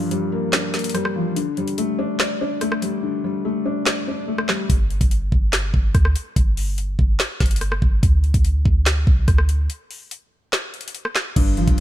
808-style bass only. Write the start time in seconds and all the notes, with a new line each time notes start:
4.70 G1
5.01 G1
5.32 G1
5.74 G1
5.95 D2
6.36 G1
6.99 G1
7.41 G1
7.82 G1
8.03 D2
8.34 D2
8.65 D2
9.07 C2
9.28 D2
11.36 G1
11.68 G1